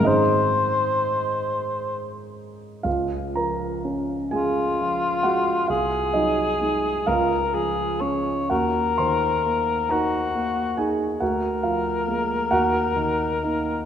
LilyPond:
<<
  \new Staff \with { instrumentName = "Cor anglais" } { \time 6/8 \key des \major \tempo 4. = 44 c''2~ c''16 r8. | r4. f'4. | aes'4. bes'8 aes'8 des''8 | bes'4. ges'4 r8 |
bes'2. | }
  \new Staff \with { instrumentName = "Grand piano" } { \time 6/8 \key des \major <aes' c'' ees''>4. r4. | <f' f''>8 <bes' bes''>4 <aes' aes''>4 <ges' ges''>8 | <f' f''>8 <ees' ees''>4 <f' f''>4. | <ges' ges''>8 <c'' c'''>4 <bes' bes''>4 <aes' aes''>8 |
<ges' ges''>8 <f' f''>4 <ges' ges''>4. | }
  \new Staff \with { instrumentName = "Grand piano" } { \clef bass \time 6/8 \key des \major <aes, ees c' ees'>2. | des,8 f8 des'8 aes8 f8 aes8 | c,8 ges8 <aes ees'>8 des,8 f8 <aes des'>8 | ees,8 ees8 bes8 ees'8 bes8 ees'8 |
d,8 f8 <aes bes>8 ees,8 ees8 <bes ees'>8 | }
>>